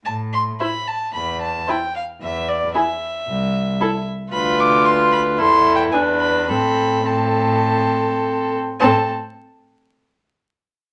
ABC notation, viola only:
X:1
M:4/4
L:1/8
Q:1/4=110
K:Am
V:1 name="Viola"
z2 E2 z2 E2 | z2 E2 z2 E2 | F4 E2 D2 | C2 C4- C z |
C z6 z |]